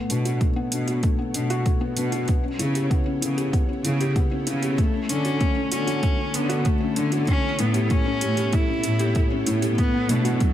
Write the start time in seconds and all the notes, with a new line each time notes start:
Already playing: B3 E4 A4 C#5
0.10 B2 D4, closed hi-hat
0.25 F#4, closed hi-hat
0.41 A3, kick, closed hi-hat
0.56 B3
0.72 B2 D4, closed hi-hat
0.88 F#4, closed hi-hat
1.03 A3, kick, closed hi-hat
1.19 B3
1.34 B2 D4, closed hi-hat
1.50 F#4, closed hi-hat
1.65 A3, kick, closed hi-hat
1.81 B3
1.96 B2 D4, closed hi-hat
2.12 F#4, closed hi-hat
2.28 B3, kick, closed hi-hat
2.44 C#4
2.59 C#3 E4, closed hi-hat
2.75 G4, closed hi-hat
2.90 B3, kick, closed hi-hat
3.06 C#4
3.21 C#3 E4, closed hi-hat
3.37 G4, closed hi-hat
3.53 B3, kick, closed hi-hat
3.69 C#4
3.85 C#3 E4, closed hi-hat
4.00 G4, closed hi-hat
4.16 B3, kick, closed hi-hat
4.31 C#4
4.47 C#3 E4, closed hi-hat
4.62 G4, closed hi-hat
4.78 A3, kick, closed hi-hat
4.94 C#4
5.09 D3 C#4 D4, closed hi-hat
5.25 F#4, closed hi-hat
5.40 A3, kick, closed hi-hat
5.56 C#4
5.72 D3 C#4 F#4, closed hi-hat
5.87 F#4, closed hi-hat
6.02 A3, kick, closed hi-hat
6.18 C#4
6.34 D3 B3 D4, closed hi-hat
6.49 F#4, closed hi-hat
6.65 A3, kick, closed hi-hat
6.80 C#4
6.96 D3 D4, closed hi-hat
7.12 F#4, closed hi-hat
7.27 A3 C#4, kick, closed hi-hat
7.43 C#4
7.59 A2 B3 E4, closed hi-hat
7.74 G4, closed hi-hat
7.90 A3 C#4, kick, closed hi-hat
8.06 C#4
8.21 A2 G4, closed hi-hat
8.37 G4, closed hi-hat
8.53 A3 E4, kick, closed hi-hat
8.68 C#4
8.83 A2 E4, closed hi-hat
8.99 G4, closed hi-hat
9.15 A3, kick, closed hi-hat
9.31 C#4
9.46 A2 E4, closed hi-hat
9.62 G4, closed hi-hat
9.78 A3 B3, kick, closed hi-hat
9.94 B3
10.09 B2 A3 D4, closed hi-hat
10.25 F#4, closed hi-hat
10.40 F#3 A3, kick, closed hi-hat